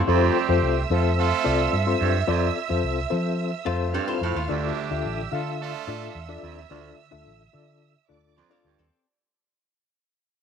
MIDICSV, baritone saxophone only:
0, 0, Header, 1, 2, 480
1, 0, Start_track
1, 0, Key_signature, -1, "major"
1, 0, Tempo, 553506
1, 62, Time_signature, 4, 2, 24, 8
1, 9037, End_track
2, 0, Start_track
2, 0, Title_t, "Baritone saxophone"
2, 0, Program_c, 0, 67
2, 63, Note_on_c, 0, 41, 89
2, 400, Note_off_c, 0, 41, 0
2, 1740, Note_on_c, 0, 43, 72
2, 1931, Note_off_c, 0, 43, 0
2, 1979, Note_on_c, 0, 41, 83
2, 2170, Note_off_c, 0, 41, 0
2, 3413, Note_on_c, 0, 43, 89
2, 3605, Note_off_c, 0, 43, 0
2, 3659, Note_on_c, 0, 45, 83
2, 3849, Note_off_c, 0, 45, 0
2, 3893, Note_on_c, 0, 38, 86
2, 4232, Note_off_c, 0, 38, 0
2, 5568, Note_on_c, 0, 41, 71
2, 5763, Note_off_c, 0, 41, 0
2, 5811, Note_on_c, 0, 38, 84
2, 6004, Note_off_c, 0, 38, 0
2, 7259, Note_on_c, 0, 41, 83
2, 7450, Note_off_c, 0, 41, 0
2, 7501, Note_on_c, 0, 43, 78
2, 7691, Note_off_c, 0, 43, 0
2, 9037, End_track
0, 0, End_of_file